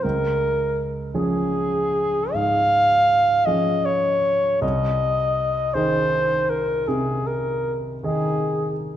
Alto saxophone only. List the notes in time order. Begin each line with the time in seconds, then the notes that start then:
0.03 A#4
1.14 G#4
2.33 F5
3.46 D#5
3.85 C#5
4.62 D#5
5.74 C5
6.50 A#4
6.88 G#4
7.27 A#4
8.03 G#4